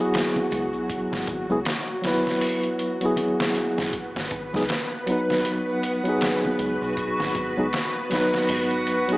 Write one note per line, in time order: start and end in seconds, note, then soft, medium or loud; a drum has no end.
0.00 1.43 F#3 medium
0.00 1.44 B3 medium
0.00 1.45 E4 medium
0.00 3.95 F#4 medium
0.00 1.46 G#4 loud
0.13 snare loud
0.13 closed hi-hat medium
0.13 shaker medium
0.36 low conga medium
0.36 shaker soft
0.51 0.71 C#2 loud
0.51 closed hi-hat medium
0.51 shaker medium
0.73 1.06 B1 medium
0.73 shaker soft
0.89 kick loud
0.89 closed hi-hat medium
0.89 shaker medium
1.12 1.26 G#1 loud
1.12 snare soft
1.12 shaker soft
1.27 1.47 G#1 medium
1.27 kick loud
1.27 closed hi-hat medium
1.27 shaker medium
1.49 1.64 C#2 loud
1.49 1.57 F#3 medium
1.49 1.58 B3 medium
1.49 1.58 E4 medium
1.49 1.59 G#4 loud
1.49 shaker soft
1.65 snare loud
1.65 closed hi-hat medium
1.65 shaker medium
1.88 shaker soft
2.02 2.95 F#3 medium
2.02 2.96 B3 medium
2.02 2.97 E4 medium
2.02 snare medium
2.02 closed hi-hat medium
2.02 shaker medium
2.07 2.98 B4 loud
2.25 snare soft
2.25 shaker soft
2.41 open hi-hat medium
2.41 shaker medium
2.63 closed hi-hat soft
2.63 shaker soft
2.79 closed hi-hat medium
2.79 shaker medium
3.01 3.91 F#3 medium
3.01 3.92 B3 medium
3.01 3.92 E4 medium
3.01 closed hi-hat soft
3.01 shaker soft
3.05 3.93 G#4 loud
3.16 closed hi-hat medium
3.16 low conga medium
3.16 shaker medium
3.39 snare loud
3.39 shaker soft
3.55 closed hi-hat medium
3.55 shaker medium
3.78 3.92 F#1 loud
3.78 snare medium
3.78 shaker soft
3.93 9.18 F#4 medium
3.93 9.18 B4 medium
3.93 kick loud
3.93 closed hi-hat medium
3.93 shaker soft
4.16 4.30 G#1 loud
4.16 snare medium
4.16 shaker soft
4.31 4.51 G#1 medium
4.31 kick medium
4.31 closed hi-hat medium
4.31 shaker medium
4.53 4.67 C#2 loud
4.53 4.62 F#3 medium
4.53 4.62 B3 medium
4.53 4.62 D#4 medium
4.53 4.63 G#4 loud
4.53 snare soft
4.53 shaker soft
4.69 snare loud
4.69 closed hi-hat medium
4.69 shaker soft
4.91 shaker soft
5.06 5.99 F#3 medium
5.06 6.00 B3 medium
5.06 6.01 D#4 medium
5.06 closed hi-hat medium
5.06 shaker medium
5.12 6.02 B4 loud
5.29 snare soft
5.29 shaker soft
5.45 closed hi-hat medium
5.45 shaker medium
5.68 shaker soft
5.83 closed hi-hat medium
5.83 shaker medium
6.04 7.51 F#3 medium
6.04 7.52 B3 medium
6.04 7.53 D#4 medium
6.04 closed hi-hat soft
6.04 shaker soft
6.09 7.54 G#4 loud
6.21 snare loud
6.21 closed hi-hat medium
6.21 shaker medium
6.45 low conga medium
6.45 shaker soft
6.59 6.79 C#2 loud
6.59 closed hi-hat medium
6.59 shaker medium
6.82 7.14 B1 medium
6.82 shaker soft
6.97 kick loud
6.97 closed hi-hat medium
6.97 shaker medium
7.19 7.33 G#1 loud
7.19 snare soft
7.19 shaker soft
7.35 7.55 G#1 medium
7.35 kick medium
7.35 closed hi-hat medium
7.35 shaker medium
7.57 7.71 C#2 loud
7.57 7.65 F#3 loud
7.57 7.65 B3 medium
7.57 7.66 D#4 medium
7.57 7.66 G#4 loud
7.57 shaker soft
7.73 snare loud
7.73 closed hi-hat medium
7.73 shaker soft
7.95 shaker soft
8.10 9.03 F#3 medium
8.10 9.04 B3 medium
8.10 9.05 D#4 medium
8.10 snare medium
8.10 closed hi-hat medium
8.10 shaker medium
8.15 9.06 B4 loud
8.34 snare soft
8.34 shaker soft
8.49 9.18 G#1 medium
8.49 open hi-hat medium
8.49 shaker soft
8.71 closed hi-hat soft
8.71 shaker soft
8.87 closed hi-hat medium
8.87 shaker loud
9.08 9.18 F#3 medium
9.08 9.18 B3 medium
9.08 9.18 D#4 medium
9.08 closed hi-hat soft
9.08 shaker soft
9.13 9.18 G#4 loud